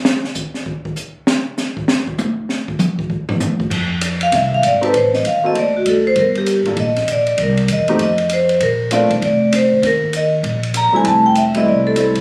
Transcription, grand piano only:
X:1
M:4/4
L:1/8
Q:"Swing" 1/4=196
K:F
V:1 name="Grand piano"
z8 | z8 | z8 | z6 z [C_EGA] |
z3 [B,C_GA] z4 | z3 [B,DFA] z4 | z3 [A,C_EG] z4 | z2 [A,CDF] z4 z |
z6 z [G,A,CE]- | [G,A,CE]2 z [G,A,CE]3 [G,A,CE] z |]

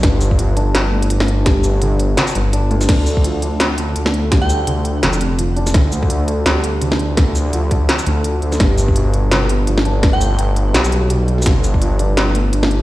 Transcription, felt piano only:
X:1
M:4/4
L:1/8
Q:"Swing 16ths" 1/4=168
K:Gmix
V:1 name="Felt piano" clef=bass
D, z F, D z A,3 | G,2 D,2 D, z D D,, | D, z F, D z A,3 | G,2 D,2 D, z F, D |
z A,3 G,2 D,2 | D, z F, D z A, z2 | G,2 B,,2 D, z F, D | z A,3 G,2 B,,2 |
D, z F, D z A,3 |]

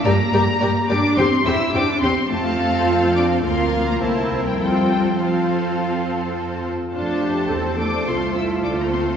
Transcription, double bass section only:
X:1
M:4/4
L:1/8
Q:1/4=105
K:Cmix
V:1 name="Double bass section" clef=bass
G,, G,, G,, G,, E,, E,, E,, E,, | F,,4 D,,2 C,,2 | F,,6- F,, z | F,,2 E,,2 C,,2 D,,2 |]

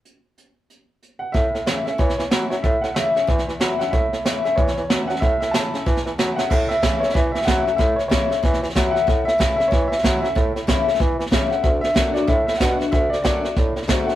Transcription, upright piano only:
X:1
M:4/4
L:1/8
Q:"Swing" 1/4=187
K:A
V:1 name="Upright piano"
z6 z f | e3 e c3 c | e f e4- e f | e3 e c3 f |
e e a4- a f | e e2 c e e f2 | e c c4- c f- | f e2 e c e2 e- |
e3 z4 f | e e2 d e e f2 | e d d4- d f |]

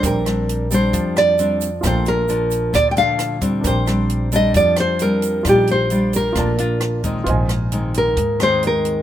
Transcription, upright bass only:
X:1
M:4/4
L:1/8
Q:1/4=133
K:Bb
V:1 name="Upright bass" clef=bass
B,,,4 F,,4 | B,,,4 D,,4 | B,,,4 F,,4 | B,,,4 B,,,4 |
B,,,4 E,,4 |]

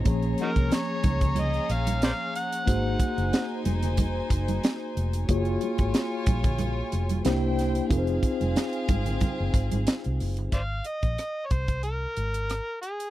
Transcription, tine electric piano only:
X:1
M:4/4
L:1/8
Q:"Swing 16ths" 1/4=92
K:Abmix
V:1 name="Tine electric piano"
[F,B,DAd]8 | [B,EGAc]8 | [B,FGAd]6 [B,=D=E=Gc]2 | [CEFABc]8 |
z8 |]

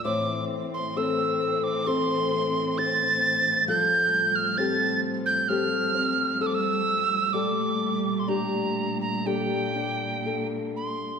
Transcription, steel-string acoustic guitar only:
X:1
M:4/4
L:1/8
Q:1/4=65
K:Gdor
V:1 name="Steel-string acoustic guitar"
[A,,c]2 [CAc]2 [CAc]2 c2 | [F,A]2 [CGA]2 [CGA] C A2 | [G,A]2 [DG]2 [DGA] D A2 |]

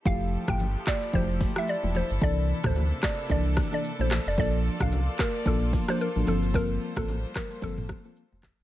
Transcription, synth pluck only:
X:1
M:4/4
L:1/16
Q:"Swing 16ths" 1/4=111
K:F
V:1 name="Synth pluck"
f2 z g2 z d2 c z2 e d z c z | d2 z c2 z d2 d z2 d z c z d | d2 z f2 z B2 A z2 c B z A z | B2 z A2 z B2 A3 z4 z |]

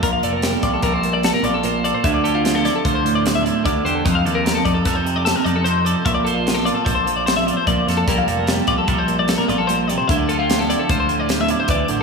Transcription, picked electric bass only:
X:1
M:5/4
L:1/8
Q:1/4=149
K:Gdor
V:1 name="Picked electric bass" clef=bass
B,,, F,,,2 B,,, B,,,3 B,,,3 | D,,4 D,,4 D,, E,, | F,, _E,,2 F,, F,,3 F,,3 | B,,,4 B,,,4 B,,, F,, |
B,,, F,,,2 B,,, B,,,3 B,,,3 | D,,4 D,,4 D,, A,,, |]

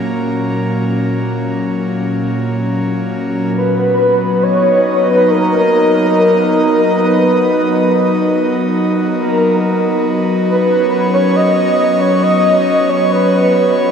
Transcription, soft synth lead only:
X:1
M:4/4
L:1/16
Q:1/4=69
K:B
V:1 name="Soft synth lead"
z16 | B4 c3 B A8 | B8 z2 A4 z2 | B3 c d3 c d3 c B4 |]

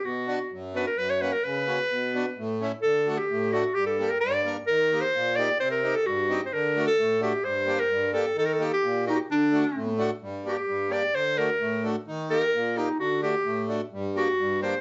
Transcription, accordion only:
X:1
M:2/4
L:1/16
Q:1/4=130
K:none
V:1 name="Accordion"
z2 [B,D^F] z3 [B,DF] z | z2 [^A,^C^F] z3 [A,CF] z | z2 [B,D^F] z3 [A,^CE] z | z2 [A,D^F] z3 [A,DF] z |
z2 [_B,DG] z3 [B,D_B] z | z2 [_B,_EG] z3 [B,EG] z | z2 [C_EG] z3 [CEG] z | z2 [A,D^F] z3 [A,DF] z |
z2 [_B,DG] z3 [B,DG] z | z2 [_B,_EG] z3 [B,EG] z | z2 [A,D^F] z3 [A,DF] z | z2 [_B,DG] z3 [B,DG] z |
z2 [A,D^F] z3 [A,DF] z | z2 [_B,_EG] z3 [B,EG] z | z2 [A,D^F] z3 [A,DF] z | z2 [_B,DG] z3 [B,DG] z |]
V:2 name="Accordion" clef=bass
B,,4 ^F,,4 | ^F,,4 ^C,4 | B,,4 A,,4 | D,4 A,,4 |
G,,4 G,,4 | _E,4 _B,,4 | C,4 G,,4 | D,4 A,,4 |
G,,4 G,,4 | _E,4 _B,,4 | D,4 A,,4 | G,,4 G,,4 |
D,4 A,,4 | _E,4 _B,,4 | D,4 A,,4 | G,,4 G,,4 |]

